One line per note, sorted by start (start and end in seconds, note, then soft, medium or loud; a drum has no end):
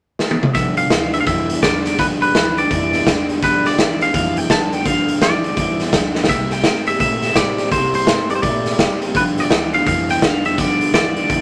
0.19 snare medium
0.31 high tom medium
0.43 mid tom medium
0.54 0.89 G1 medium
0.54 0.77 G2 medium
0.54 0.88 G2 medium
0.54 0.77 D3 medium
0.54 0.88 D3 medium
0.54 0.78 F3 medium
0.54 0.78 B3 medium
0.54 0.76 D4 medium
0.54 0.75 G4 medium
0.54 0.77 E5 medium
0.54 kick loud
0.54 snare soft
0.54 closed hi-hat medium
0.76 0.91 F3 soft
0.76 0.91 B3 medium
0.76 0.91 D4 soft
0.76 0.90 G4 medium
0.76 1.13 F5 medium
0.76 closed hi-hat medium
0.90 1.25 D2 medium
0.90 1.14 G2 medium
0.90 1.11 G2 medium
0.90 1.14 D3 medium
0.90 1.12 E3 medium
0.90 1.14 F3 medium
0.90 1.13 B3 medium
0.90 1.12 D4 medium
0.90 1.11 G4 medium
0.90 snare loud
0.90 closed hi-hat medium
1.13 1.25 G2 medium
1.13 1.26 D3 medium
1.13 1.25 F3 soft
1.13 1.26 B3 medium
1.13 1.27 D4 medium
1.13 1.27 G4 medium
1.13 1.17 E5 medium
1.13 closed hi-hat medium
1.21 1.26 F5 medium
1.26 1.60 F2 medium
1.26 1.60 G2 medium
1.26 1.60 E3 medium
1.26 1.49 F3 medium
1.26 1.49 B3 medium
1.26 1.48 D4 medium
1.26 1.47 G4 medium
1.26 1.62 E5 medium
1.26 kick loud
1.26 closed hi-hat medium
1.48 1.61 F3 soft
1.48 1.62 B3 soft
1.48 1.62 D4 medium
1.48 1.62 G4 medium
1.48 closed hi-hat medium
1.62 1.96 E2 medium
1.62 1.85 G2 medium
1.62 1.83 G2 medium
1.62 1.85 D3 medium
1.62 1.84 D3 medium
1.62 1.85 F3 medium
1.62 1.86 B3 medium
1.62 1.85 D4 medium
1.62 1.84 G4 medium
1.62 1.96 D5 medium
1.62 kick medium
1.62 snare loud
1.62 closed hi-hat medium
1.85 1.98 G2 medium
1.85 1.98 D3 medium
1.85 1.98 F3 soft
1.85 1.98 B3 soft
1.85 1.98 D4 soft
1.85 1.99 G4 soft
1.85 snare soft
1.85 closed hi-hat medium
1.98 2.33 G1 medium
1.98 2.21 G2 medium
1.98 2.32 G2 medium
1.98 2.21 D3 medium
1.98 2.32 D3 medium
1.98 2.22 F3 medium
1.98 2.22 B3 medium
1.98 2.21 D4 medium
1.98 2.20 G4 medium
1.98 2.05 B4 medium
1.98 kick loud
1.98 snare soft
1.98 closed hi-hat medium
2.21 2.34 F3 soft
2.21 2.35 B3 soft
2.21 2.35 D4 medium
2.21 2.35 G4 medium
2.21 2.59 B4 medium
2.21 closed hi-hat medium
2.35 2.68 D2 medium
2.35 2.57 G2 medium
2.35 2.55 G2 medium
2.35 2.58 D3 medium
2.35 2.55 E3 medium
2.35 2.58 F3 medium
2.35 2.58 B3 medium
2.35 2.57 D4 medium
2.35 2.56 G4 medium
2.35 snare loud
2.35 closed hi-hat medium
2.57 2.70 G2 medium
2.57 2.70 D3 medium
2.57 2.69 F3 soft
2.57 2.70 B3 soft
2.57 2.71 D4 soft
2.57 2.70 G4 medium
2.57 3.26 D5 loud
2.57 closed hi-hat medium
2.70 3.04 F2 medium
2.70 3.04 G2 medium
2.70 3.04 E3 medium
2.70 2.93 F3 medium
2.70 2.93 B3 medium
2.70 2.92 D4 medium
2.70 2.91 G4 medium
2.70 kick loud
2.70 closed hi-hat medium
2.92 3.05 F3 soft
2.92 3.06 B3 soft
2.92 3.06 D4 soft
2.92 3.06 G4 soft
2.92 snare soft
2.92 closed hi-hat medium
3.05 3.40 E2 medium
3.05 3.29 G2 medium
3.05 3.27 G2 medium
3.05 3.29 D3 medium
3.05 3.27 D3 medium
3.05 3.29 F3 medium
3.05 3.29 B3 medium
3.05 3.28 D4 loud
3.05 3.27 G4 medium
3.05 kick medium
3.05 snare loud
3.05 closed hi-hat medium
3.28 3.41 G2 medium
3.28 3.41 D3 medium
3.28 3.41 F3 soft
3.28 3.42 B3 soft
3.28 3.42 D4 medium
3.28 3.42 G4 medium
3.28 closed hi-hat medium
3.42 3.76 G1 medium
3.42 3.65 G2 medium
3.42 3.76 G2 medium
3.42 3.65 D3 medium
3.42 3.76 D3 medium
3.42 3.65 F3 medium
3.42 3.65 B3 medium
3.42 3.64 D4 medium
3.42 3.63 G4 medium
3.42 3.66 B4 medium
3.42 kick loud
3.42 snare soft
3.42 closed hi-hat medium
3.64 3.77 F3 soft
3.64 3.77 B3 soft
3.64 3.78 D4 medium
3.64 3.78 G4 medium
3.64 4.02 D5 medium
3.64 snare soft
3.64 closed hi-hat medium
3.77 4.12 D2 medium
3.77 4.00 G2 medium
3.77 3.98 G2 medium
3.77 4.01 D3 medium
3.77 3.99 E3 medium
3.77 4.01 F3 medium
3.77 4.00 B3 medium
3.77 3.99 D4 medium
3.77 3.98 G4 medium
3.77 snare loud
3.77 closed hi-hat medium
4.00 4.12 G2 medium
4.00 4.13 D3 medium
4.00 4.13 F3 soft
4.00 4.14 B3 medium
4.00 4.14 D4 medium
4.00 4.13 G4 medium
4.00 4.14 F5 loud
4.00 closed hi-hat medium
4.14 4.47 F2 loud
4.14 4.47 G2 medium
4.14 4.47 E3 medium
4.14 4.36 F3 medium
4.14 4.37 B3 medium
4.14 4.37 D4 medium
4.14 4.36 G4 medium
4.14 4.38 F5 loud
4.14 kick loud
4.14 closed hi-hat medium
4.37 4.50 F3 soft
4.37 4.50 B3 soft
4.37 4.51 D4 medium
4.37 4.50 G4 medium
4.37 4.50 G5 loud
4.37 closed hi-hat medium
4.50 4.70 G2 medium
4.50 4.72 G2 medium
4.50 4.70 D3 medium
4.50 4.73 D3 medium
4.50 4.73 F3 medium
4.50 4.73 B3 medium
4.50 4.72 D4 medium
4.50 4.72 G4 medium
4.50 4.73 A5 loud
4.50 kick medium
4.50 snare loud
4.50 closed hi-hat medium
4.72 4.84 G2 medium
4.72 4.84 D3 medium
4.72 4.86 F3 soft
4.72 4.87 B3 soft
4.72 4.86 D4 soft
4.72 4.86 G4 medium
4.72 4.86 G5 loud
4.72 closed hi-hat medium
4.85 5.19 G1 medium
4.85 5.18 G2 medium
4.85 5.08 G2 medium
4.85 5.19 D3 medium
4.85 5.09 D3 medium
4.85 5.09 F3 medium
4.85 5.09 B3 medium
4.85 5.08 D4 medium
4.85 5.08 G4 medium
4.85 5.23 F5 loud
4.85 kick loud
4.85 closed hi-hat medium
5.08 5.21 F3 soft
5.08 5.21 B3 soft
5.08 5.21 D4 medium
5.08 5.22 G4 medium
5.08 closed hi-hat medium
5.21 5.55 D2 medium
5.21 5.44 G2 medium
5.21 5.41 G2 medium
5.21 5.44 D3 medium
5.21 5.42 E3 medium
5.21 5.44 F3 medium
5.21 5.44 B3 medium
5.21 5.44 D4 medium
5.21 5.42 G4 medium
5.21 5.89 D5 medium
5.21 snare loud
5.21 closed hi-hat medium
5.44 5.56 G2 medium
5.44 5.56 D3 medium
5.44 5.56 F3 soft
5.44 5.56 B3 medium
5.44 5.58 D4 medium
5.44 5.57 G4 medium
5.44 closed hi-hat medium
5.57 5.91 F2 loud
5.57 5.90 G2 medium
5.57 5.91 E3 medium
5.57 5.79 F3 medium
5.57 5.80 B3 medium
5.57 5.79 D4 medium
5.57 5.78 G4 medium
5.57 kick loud
5.57 closed hi-hat medium
5.79 5.92 F3 soft
5.79 5.92 B3 medium
5.79 5.93 D4 medium
5.79 5.93 G4 medium
5.79 snare soft
5.79 closed hi-hat medium
5.92 6.26 D2 medium
5.92 6.15 G2 medium
5.92 6.13 G2 medium
5.92 6.15 D3 medium
5.92 6.13 D3 medium
5.92 6.15 F3 medium
5.92 6.16 B3 loud
5.92 6.15 D4 medium
5.92 6.14 G4 loud
5.92 kick medium
5.92 snare loud
5.92 closed hi-hat medium
6.15 6.27 G2 medium
6.15 6.28 D3 medium
6.15 6.28 F3 soft
6.15 6.29 B3 medium
6.15 6.29 D4 medium
6.15 6.29 G4 medium
6.15 snare medium
6.24 snare medium
6.28 6.62 C2 medium
6.28 6.51 C3 medium
6.28 6.62 C3 medium
6.28 6.51 G3 medium
6.28 6.62 G3 medium
6.28 6.51 A#3 medium
6.28 6.52 E4 medium
6.28 6.50 G4 medium
6.28 6.52 E5 loud
6.28 kick loud
6.28 closed hi-hat medium
6.51 6.64 A#3 soft
6.51 6.65 E4 medium
6.51 6.64 G4 medium
6.51 6.87 G5 loud
6.51 snare soft
6.51 closed hi-hat medium
6.64 6.98 G2 medium
6.64 6.84 C3 medium
6.64 6.87 C3 medium
6.64 6.87 G3 medium
6.64 6.85 A3 medium
6.64 6.87 A#3 medium
6.64 6.86 E4 medium
6.64 6.85 G4 medium
6.64 snare loud
6.64 closed hi-hat medium
6.86 6.99 C3 medium
6.86 6.99 G3 medium
6.86 6.99 A#3 soft
6.86 7.00 E4 soft
6.86 7.00 G4 medium
6.86 6.99 E5 loud
6.86 closed hi-hat medium
7.00 7.34 A#2 medium
7.00 7.33 C3 medium
7.00 7.22 G3 medium
7.00 7.34 A3 medium
7.00 7.23 A#3 medium
7.00 7.23 E4 medium
7.00 7.21 G4 medium
7.00 7.37 E5 loud
7.00 kick loud
7.00 closed hi-hat medium
7.22 7.36 A#3 soft
7.22 7.36 E4 soft
7.22 7.36 G4 soft
7.22 snare soft
7.22 closed hi-hat medium
7.35 7.69 A2 medium
7.35 7.58 C3 medium
7.35 7.56 C3 medium
7.35 7.59 G3 medium
7.35 7.56 G3 medium
7.35 7.59 A#3 medium
7.35 7.59 E4 medium
7.35 7.57 G4 medium
7.35 7.70 D5 medium
7.35 kick medium
7.35 snare loud
7.35 closed hi-hat medium
7.58 7.71 C3 medium
7.58 7.71 G3 medium
7.58 7.71 A#3 soft
7.58 7.71 E4 soft
7.58 7.72 G4 soft
7.58 snare soft
7.58 closed hi-hat medium
7.71 8.05 C2 medium
7.71 7.94 C3 medium
7.71 8.05 C3 medium
7.71 7.94 G3 medium
7.71 8.05 G3 medium
7.71 7.95 A#3 medium
7.71 7.94 E4 medium
7.71 7.92 G4 medium
7.71 7.94 C5 loud
7.71 kick loud
7.71 closed hi-hat medium
7.93 8.06 A#3 soft
7.93 8.06 E4 medium
7.93 8.07 G4 medium
7.93 8.28 C5 medium
7.93 closed hi-hat medium
8.06 8.41 G2 medium
8.06 8.29 C3 medium
8.06 8.28 C3 medium
8.06 8.30 G3 medium
8.06 8.28 A3 medium
8.06 8.30 A#3 medium
8.06 8.30 E4 medium
8.06 8.28 G4 medium
8.06 snare loud
8.06 closed hi-hat medium
8.29 8.41 C3 medium
8.29 8.42 G3 medium
8.29 8.42 A#3 soft
8.29 8.43 E4 soft
8.29 8.43 G4 medium
8.29 8.35 D5 loud
8.29 closed hi-hat medium
8.35 8.40 C5 medium
8.42 8.77 A#2 medium
8.42 8.76 C3 medium
8.42 8.65 G3 medium
8.42 8.76 A3 loud
8.42 8.66 A#3 medium
8.42 8.65 E4 medium
8.42 8.64 G4 medium
8.42 8.99 D5 loud
8.42 kick loud
8.42 closed hi-hat medium
8.65 8.78 A#3 soft
8.65 8.78 E4 soft
8.65 8.79 G4 medium
8.65 snare soft
8.65 closed hi-hat medium
8.78 9.12 F#1 medium
8.78 9.01 C3 medium
8.78 8.99 C3 medium
8.78 9.01 G3 medium
8.78 8.99 G3 loud
8.78 9.02 A#3 medium
8.78 9.02 E4 medium
8.78 9.00 G4 medium
8.78 kick medium
8.78 snare loud
8.78 closed hi-hat medium
9.01 9.14 C3 medium
9.01 9.14 G3 medium
9.01 9.15 A#3 soft
9.01 9.15 E4 medium
9.01 9.15 G4 medium
9.01 closed hi-hat medium
9.14 9.48 G1 medium
9.14 9.48 G2 medium
9.14 9.37 G2 medium
9.14 9.48 D3 medium
9.14 9.37 D3 medium
9.14 9.38 F3 medium
9.14 9.37 B3 medium
9.14 9.36 F4 medium
9.14 9.35 G4 medium
9.14 9.22 B4 medium
9.14 kick loud
9.14 closed hi-hat medium
9.36 9.50 F3 soft
9.36 9.50 B3 soft
9.36 9.50 F4 medium
9.36 9.50 G4 medium
9.36 9.75 D5 loud
9.36 snare soft
9.36 closed hi-hat medium
9.49 9.84 D2 medium
9.49 9.73 G2 medium
9.49 9.71 G2 medium
9.49 9.73 D3 medium
9.49 9.71 E3 medium
9.49 9.73 F3 medium
9.49 9.73 B3 medium
9.49 9.72 F4 medium
9.49 9.71 G4 medium
9.49 snare loud
9.49 closed hi-hat medium
9.72 9.85 G2 medium
9.72 9.85 D3 medium
9.72 9.84 F3 soft
9.72 9.86 B3 soft
9.72 9.87 F4 medium
9.72 9.86 G4 medium
9.72 9.86 F5 loud
9.72 closed hi-hat medium
9.86 10.20 F2 loud
9.86 10.20 G2 medium
9.86 10.20 E3 medium
9.86 10.08 F3 medium
9.86 10.09 B3 medium
9.86 10.07 G4 medium
9.86 10.10 F5 loud
9.86 kick loud
9.86 closed hi-hat medium
10.08 10.21 F3 soft
10.08 10.21 B3 medium
10.08 10.22 F4 soft
10.08 10.22 G4 soft
10.08 10.24 G5 loud
10.08 snare soft
10.08 closed hi-hat medium
10.21 10.44 G2 medium
10.21 10.43 G2 medium
10.21 10.45 D3 medium
10.21 10.43 D3 medium
10.21 10.45 F3 medium
10.21 10.45 B3 medium
10.21 10.44 F4 medium
10.21 10.43 G4 medium
10.21 10.45 F5 medium
10.21 kick medium
10.21 snare loud
10.21 closed hi-hat medium
10.44 10.57 G2 medium
10.44 10.57 D3 medium
10.44 10.58 F3 soft
10.44 10.58 B3 soft
10.44 10.58 F4 soft
10.44 10.58 G4 medium
10.44 10.59 E5 medium
10.44 closed hi-hat medium
10.58 10.91 G1 medium
10.58 10.80 G2 medium
10.58 10.91 G2 medium
10.58 10.91 D3 medium
10.58 10.81 D3 medium
10.58 10.81 F3 medium
10.58 10.81 B3 medium
10.58 10.80 F4 medium
10.58 10.79 G4 medium
10.58 10.93 D5 medium
10.58 kick loud
10.58 snare soft
10.58 closed hi-hat medium
10.80 10.93 F3 soft
10.80 10.94 B3 medium
10.80 10.94 F4 medium
10.80 10.93 G4 medium
10.80 closed hi-hat medium
10.93 11.27 D2 medium
10.93 11.14 G2 medium
10.93 11.16 G2 medium
10.93 11.16 D3 medium
10.93 11.14 E3 medium
10.93 11.17 F3 medium
10.93 11.17 B3 medium
10.93 11.16 F4 medium
10.93 11.15 G4 medium
10.93 11.41 D5 medium
10.93 snare loud
10.93 closed hi-hat medium
11.16 11.28 G2 medium
11.16 11.28 D3 medium
11.16 11.27 F3 soft
11.16 11.28 B3 soft
11.16 11.29 F4 soft
11.16 11.29 G4 medium
11.16 closed hi-hat medium
11.28 11.41 F2 medium
11.28 11.41 G2 medium
11.28 11.41 E3 medium
11.28 11.41 F3 medium
11.28 11.41 B3 medium
11.28 11.41 F4 medium
11.28 11.41 G4 medium
11.28 kick loud
11.28 closed hi-hat medium